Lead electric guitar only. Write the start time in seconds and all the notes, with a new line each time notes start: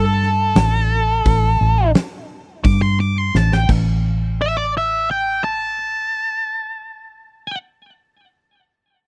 Already playing: A4
2.64 D6
2.82 C6
3.00 D6
3.18 C6
3.37 A5
3.53 G5
4.42 E5
4.57 D5
4.77 E5
5.11 G5
5.44 A5